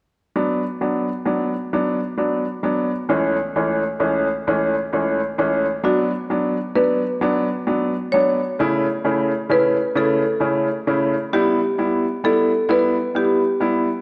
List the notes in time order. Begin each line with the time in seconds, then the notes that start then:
0.36 F#3 B3 D4
0.81 F#3 B3 D4
1.25 F#3 B3 D4
1.73 F#3 B3 D4
2.17 F#3 B3 D4
2.63 F#3 B3 D4
3.09 C#2 E3 A3 C#4
3.56 C#2 E3 A3 C#4
4.00 C#2 E3 A3 C#4
4.47 C#2 E3 A3 C#4
4.93 C#2 E3 A3 C#4
5.38 C#2 E3 A3 C#4
5.83 F#3 B3 D4 F#4
6.30 F#3 B3 D4
6.75 F#3 B3 D4 B4
7.21 F#3 B3 D4
7.67 F#3 B3 D4
8.12 F#3 B3 D4 C#5
8.59 C#3 A3 C#4 E4
9.04 C#3 A3 C#4 E4
9.49 C#3 A3 C#4 E4 B4
9.95 C#3 A3 C#4 E4 A4
10.40 C#3 A3 C#4 E4
10.87 C#3 A3 C#4 E4
11.33 G3 B3 E4 G4
11.78 G3 B3 E4
12.24 G3 B3 E4 A4
12.69 G3 B3 E4 B4
13.15 G3 B3 E4 G4
13.60 G3 B3 E4